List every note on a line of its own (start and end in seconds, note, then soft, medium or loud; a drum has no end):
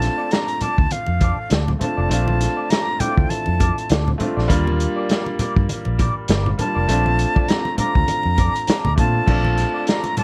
0.00 0.63 A3 medium
0.00 0.63 C4 medium
0.00 0.64 D4 medium
0.00 0.65 F4 medium
0.00 0.34 A5 medium
0.00 muted clean electric guitar stroke soft
0.00 snare soft
0.00 closed hi-hat medium
0.18 0.29 D4 soft
0.18 0.29 F4 soft
0.18 0.29 A4 soft
0.18 0.28 D5 soft
0.31 0.49 D4 medium
0.31 0.48 F4 medium
0.31 0.48 A4 medium
0.31 0.47 D5 medium
0.31 0.64 A#5 medium
0.31 snare medium
0.31 closed hi-hat medium
0.48 muted clean electric guitar stroke soft
0.48 closed hi-hat soft
0.60 0.75 D4 soft
0.60 0.75 F4 soft
0.60 0.75 A4 soft
0.60 0.76 D5 soft
0.60 0.93 A5 medium
0.60 muted fingered electric bass stroke soft
0.60 closed hi-hat medium
0.60 low conga medium
0.78 0.88 D2 medium
0.78 muted clean electric guitar stroke soft
0.78 kick medium
0.91 1.51 F5 medium
0.91 muted clean electric guitar stroke soft
0.91 muted fingered electric bass stroke soft
0.91 closed hi-hat medium
0.91 muted conga soft
0.91 high conga soft
1.07 1.31 F2 medium
1.07 muted conga soft
1.20 1.35 D4 medium
1.20 1.35 F4 medium
1.20 1.35 A4 medium
1.20 1.35 D5 medium
1.20 kick medium
1.20 closed hi-hat medium
1.20 high conga medium
1.37 muted clean electric guitar stroke soft
1.50 1.74 D2 medium
1.50 1.68 D4 medium
1.50 1.68 F4 medium
1.50 1.69 A4 medium
1.50 1.69 D5 medium
1.50 snare loud
1.50 closed hi-hat medium
1.50 muted conga soft
1.68 muted conga soft
1.68 low conga medium
1.79 2.04 A3 medium
1.79 2.04 C4 medium
1.79 2.05 D4 medium
1.79 2.06 F4 medium
1.79 2.72 A5 medium
1.79 muted clean electric guitar stroke soft
1.79 closed hi-hat medium
1.79 high conga medium
1.79 low conga medium
1.97 2.07 F1 medium
1.97 2.08 D4 soft
1.97 2.08 F4 soft
1.97 2.08 A4 soft
1.97 2.08 D5 soft
2.09 2.46 A#1 medium
2.09 2.80 A3 medium
2.09 2.81 C4 medium
2.09 2.28 D4 medium
2.09 2.81 D4 medium
2.09 2.27 F4 medium
2.09 2.82 F4 medium
2.09 2.27 A4 medium
2.09 2.26 D5 medium
2.09 closed hi-hat medium
2.27 muted clean electric guitar stroke soft
2.27 muted conga soft
2.27 high conga medium
2.40 muted clean electric guitar stroke soft
2.40 snare soft
2.40 closed hi-hat medium
2.57 2.68 D4 soft
2.57 2.68 F4 soft
2.57 2.68 A4 medium
2.57 2.67 D5 soft
2.70 2.92 D4 medium
2.70 2.87 F4 medium
2.70 2.87 A4 medium
2.70 2.86 D5 medium
2.70 3.01 A#5 medium
2.70 snare medium
2.70 closed hi-hat medium
2.70 muted conga soft
2.87 muted clean electric guitar stroke soft
2.99 3.92 A3 medium
2.99 3.93 C4 soft
2.99 3.14 D4 medium
2.99 3.93 D4 medium
2.99 3.09 E4 soft
2.99 3.14 F4 medium
2.99 3.15 A4 medium
2.99 3.15 D5 medium
2.99 3.31 G5 medium
2.99 muted fingered electric bass stroke soft
2.99 closed hi-hat medium
2.99 low conga medium
3.09 3.97 F4 medium
3.17 3.27 D2 medium
3.17 muted clean electric guitar stroke soft
3.17 kick medium
3.30 3.90 A5 medium
3.30 muted clean electric guitar stroke soft
3.30 closed hi-hat medium
3.30 high conga soft
3.46 3.70 F2 medium
3.46 muted conga soft
3.60 3.74 D4 soft
3.60 3.74 F4 medium
3.60 3.74 A4 medium
3.60 3.75 D5 medium
3.60 kick medium
3.60 closed hi-hat medium
3.60 high conga medium
3.78 muted clean electric guitar stroke soft
3.78 closed hi-hat soft
3.90 4.13 D2 medium
3.90 4.07 D4 medium
3.90 4.08 F4 medium
3.90 4.08 A4 medium
3.90 4.08 D5 medium
3.90 snare loud
3.90 closed hi-hat medium
4.08 muted conga soft
4.08 low conga medium
4.18 4.43 A3 medium
4.18 4.44 C4 medium
4.18 4.44 D4 medium
4.18 4.45 F4 medium
4.18 muted clean electric guitar stroke soft
4.18 closed hi-hat medium
4.18 high conga medium
4.18 low conga medium
4.37 4.47 A#1 medium
4.37 4.48 D4 soft
4.37 4.48 F4 soft
4.37 4.47 A4 soft
4.37 4.47 D5 soft
4.37 snare soft
4.48 4.85 D#2 medium
4.48 5.41 G3 loud
4.48 5.42 A#3 medium
4.48 4.67 D4 medium
4.48 5.42 D4 medium
4.48 5.43 F4 loud
4.48 4.67 G4 medium
4.48 4.66 A#4 medium
4.48 4.66 D5 medium
4.48 kick medium
4.48 closed hi-hat medium
4.48 muted conga soft
4.67 muted conga soft
4.67 high conga medium
4.79 muted clean electric guitar stroke soft
4.79 closed hi-hat medium
4.96 5.08 D4 soft
4.96 5.07 G4 soft
4.96 5.07 A#4 soft
4.96 5.07 D5 medium
5.09 5.27 D4 medium
5.09 5.26 G4 medium
5.09 5.26 A#4 medium
5.09 5.25 D5 medium
5.09 snare medium
5.09 closed hi-hat medium
5.09 muted conga soft
5.26 muted clean electric guitar stroke soft
5.26 muted conga soft
5.39 5.53 D4 medium
5.39 5.53 G4 medium
5.39 5.54 A#4 medium
5.39 5.54 D5 medium
5.39 muted fingered electric bass stroke soft
5.39 closed hi-hat medium
5.39 low conga medium
5.56 5.66 G2 medium
5.56 muted clean electric guitar stroke soft
5.56 kick medium
5.69 muted clean electric guitar stroke soft
5.69 closed hi-hat medium
5.69 high conga soft
5.85 6.09 A#1 medium
5.85 muted conga soft
5.99 6.13 D4 medium
5.99 6.13 G4 medium
5.99 6.13 A#4 medium
5.99 6.13 D5 medium
5.99 kick medium
5.99 closed hi-hat medium
5.99 high conga medium
6.28 6.52 G1 medium
6.28 6.46 D4 medium
6.28 6.47 G4 medium
6.28 6.47 A#4 medium
6.28 6.47 D5 medium
6.28 snare medium
6.28 closed hi-hat medium
6.28 muted conga soft
6.46 low conga medium
6.58 6.82 G3 medium
6.58 6.83 A#3 medium
6.58 6.83 D4 medium
6.58 6.84 F4 medium
6.58 7.50 A5 loud
6.58 muted clean electric guitar stroke soft
6.58 closed hi-hat medium
6.58 high conga medium
6.58 low conga medium
6.75 6.86 F1 medium
6.75 6.86 D4 soft
6.75 6.86 G4 soft
6.75 6.86 A#4 soft
6.75 6.86 D5 medium
6.88 7.24 A#1 loud
6.88 7.59 A3 medium
6.88 7.06 C4 medium
6.88 7.59 C4 medium
6.88 7.60 D4 medium
6.88 7.05 F4 medium
6.88 7.60 F4 medium
6.88 7.05 A4 medium
6.88 7.04 D5 medium
6.88 closed hi-hat medium
7.05 muted clean electric guitar stroke soft
7.05 high conga medium
7.18 muted clean electric guitar stroke soft
7.18 closed hi-hat medium
7.35 7.47 C4 soft
7.35 7.46 F4 soft
7.35 7.46 A4 soft
7.35 7.46 D5 soft
7.35 kick medium
7.48 7.66 C4 medium
7.48 7.65 F4 medium
7.48 7.64 A4 medium
7.48 7.64 D5 medium
7.48 7.78 A#5 medium
7.48 snare medium
7.48 closed hi-hat medium
7.48 muted conga soft
7.65 muted clean electric guitar stroke soft
7.65 muted conga soft
7.77 8.70 A3 medium
7.77 7.92 C4 soft
7.77 8.70 C4 medium
7.77 8.71 D4 medium
7.77 7.92 F4 medium
7.77 8.72 F4 medium
7.77 7.92 A4 medium
7.77 7.93 D5 soft
7.77 8.94 A#5 loud
7.77 muted fingered electric bass stroke soft
7.77 closed hi-hat medium
7.77 low conga medium
7.95 8.05 D2 medium
7.95 muted clean electric guitar stroke soft
7.95 kick medium
8.07 muted clean electric guitar stroke soft
8.07 muted fingered electric bass stroke soft
8.07 closed hi-hat medium
8.07 muted conga soft
8.07 high conga soft
8.23 8.48 F2 medium
8.23 muted conga soft
8.37 8.52 C4 medium
8.37 8.52 F4 medium
8.37 8.52 A4 medium
8.37 8.52 D5 medium
8.37 kick medium
8.37 closed hi-hat medium
8.37 high conga medium
8.55 muted clean electric guitar stroke soft
8.55 closed hi-hat soft
8.67 8.96 C4 medium
8.67 8.96 F4 medium
8.67 8.96 A4 medium
8.67 8.96 D5 medium
8.67 muted fingered electric bass stroke soft
8.67 snare loud
8.67 closed hi-hat medium
8.85 8.95 D2 medium
8.85 muted conga soft
8.85 low conga medium
8.96 9.20 A#2 medium
8.96 9.21 A3 medium
8.96 9.22 C4 medium
8.96 9.22 D4 medium
8.96 9.23 F4 medium
8.96 9.90 A5 medium
8.96 muted clean electric guitar stroke soft
8.96 kick medium
8.96 closed hi-hat medium
8.96 high conga medium
8.96 low conga medium
9.15 muted clean electric guitar stroke soft
9.26 9.63 A#1 medium
9.26 10.19 A3 medium
9.26 10.20 C4 medium
9.26 9.45 D4 medium
9.26 10.20 D4 medium
9.26 9.44 F4 medium
9.26 10.21 F4 medium
9.26 9.43 A4 medium
9.26 9.43 D5 medium
9.26 kick medium
9.26 crash medium
9.26 muted conga soft
9.44 muted clean electric guitar stroke soft
9.44 high conga medium
9.57 muted clean electric guitar stroke soft
9.57 snare soft
9.57 closed hi-hat medium
9.74 9.85 D4 soft
9.74 9.85 F4 soft
9.74 9.85 A4 soft
9.74 9.85 D5 soft
9.86 10.04 D4 medium
9.86 10.04 F4 medium
9.86 10.04 A4 medium
9.86 10.03 D5 medium
9.86 10.18 A#5 medium
9.86 snare medium
9.86 closed hi-hat medium
10.04 muted clean electric guitar stroke soft
10.04 closed hi-hat soft
10.04 muted conga soft
10.17 10.24 D4 soft
10.17 10.24 F4 soft
10.17 10.24 A4 soft
10.17 10.24 D5 medium
10.17 10.24 A5 medium
10.17 muted fingered electric bass stroke soft
10.17 closed hi-hat medium
10.17 low conga medium